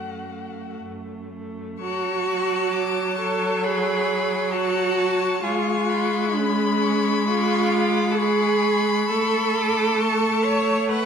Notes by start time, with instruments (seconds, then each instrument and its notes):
Already playing: cello F#2, viola A3, violin F#4 F#5
0.33 viola A3
0.82 cello F#2
1.33 viola A3
1.80 viola F#3, cello F#4, violin A5 C#6
2.72 violin D6
3.18 cello A4, violin C#6
3.63 cello G#4, violin B5
4.52 cello F#4, violin A5 C#6
4.98 violin A5
5.43 viola G#3, cello F4, violin G#5 C#6
5.89 violin B5
6.36 cello C#4, violin B5
6.82 violin C#6
7.27 cello F4, violin C#6
7.72 violin D6
8.12 cello A4
8.18 cello G#4, violin B5 C#6
9.09 viola A3, cello A4, violin C#6
9.55 violin D6
10.00 violin A5 C#6
10.45 cello C#5
10.89 cello B4, violin F#5 C#6